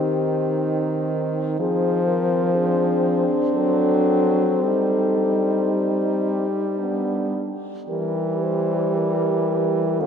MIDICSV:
0, 0, Header, 1, 5, 480
1, 0, Start_track
1, 0, Key_signature, -3, "minor"
1, 0, Tempo, 985222
1, 782, Time_signature, 3, 2, 24, 8
1, 1735, Tempo, 1083032
1, 3655, Tempo, 1052632
1, 4645, End_track
2, 0, Start_track
2, 0, Title_t, "French horn"
2, 0, Program_c, 0, 60
2, 0, Note_on_c, 0, 67, 56
2, 528, Note_off_c, 0, 67, 0
2, 780, Note_on_c, 0, 68, 74
2, 1014, Note_on_c, 0, 70, 67
2, 1022, Note_off_c, 0, 68, 0
2, 1246, Note_on_c, 0, 68, 64
2, 1254, Note_off_c, 0, 70, 0
2, 1728, Note_off_c, 0, 68, 0
2, 1731, Note_on_c, 0, 69, 70
2, 2201, Note_off_c, 0, 69, 0
2, 2210, Note_on_c, 0, 69, 62
2, 2689, Note_on_c, 0, 67, 43
2, 2695, Note_off_c, 0, 69, 0
2, 3409, Note_off_c, 0, 67, 0
2, 3654, Note_on_c, 0, 70, 60
2, 3896, Note_on_c, 0, 72, 50
2, 3903, Note_off_c, 0, 70, 0
2, 4135, Note_on_c, 0, 70, 58
2, 4142, Note_off_c, 0, 72, 0
2, 4616, Note_on_c, 0, 69, 58
2, 4623, Note_off_c, 0, 70, 0
2, 4645, Note_off_c, 0, 69, 0
2, 4645, End_track
3, 0, Start_track
3, 0, Title_t, "French horn"
3, 0, Program_c, 1, 60
3, 0, Note_on_c, 1, 63, 38
3, 1102, Note_off_c, 1, 63, 0
3, 1245, Note_on_c, 1, 62, 55
3, 2195, Note_off_c, 1, 62, 0
3, 2216, Note_on_c, 1, 63, 39
3, 3164, Note_on_c, 1, 62, 34
3, 3170, Note_off_c, 1, 63, 0
3, 3507, Note_off_c, 1, 62, 0
3, 3655, Note_on_c, 1, 67, 41
3, 4614, Note_on_c, 1, 65, 41
3, 4621, Note_off_c, 1, 67, 0
3, 4645, Note_off_c, 1, 65, 0
3, 4645, End_track
4, 0, Start_track
4, 0, Title_t, "French horn"
4, 0, Program_c, 2, 60
4, 0, Note_on_c, 2, 60, 39
4, 763, Note_off_c, 2, 60, 0
4, 780, Note_on_c, 2, 60, 61
4, 3020, Note_off_c, 2, 60, 0
4, 3164, Note_on_c, 2, 59, 36
4, 3489, Note_off_c, 2, 59, 0
4, 3653, Note_on_c, 2, 55, 45
4, 4617, Note_on_c, 2, 60, 41
4, 4624, Note_off_c, 2, 55, 0
4, 4645, Note_off_c, 2, 60, 0
4, 4645, End_track
5, 0, Start_track
5, 0, Title_t, "French horn"
5, 0, Program_c, 3, 60
5, 0, Note_on_c, 3, 51, 44
5, 761, Note_off_c, 3, 51, 0
5, 777, Note_on_c, 3, 53, 57
5, 1581, Note_off_c, 3, 53, 0
5, 1735, Note_on_c, 3, 54, 53
5, 2210, Note_on_c, 3, 55, 43
5, 2216, Note_off_c, 3, 54, 0
5, 3506, Note_off_c, 3, 55, 0
5, 3655, Note_on_c, 3, 52, 44
5, 4616, Note_on_c, 3, 51, 48
5, 4623, Note_off_c, 3, 52, 0
5, 4645, Note_off_c, 3, 51, 0
5, 4645, End_track
0, 0, End_of_file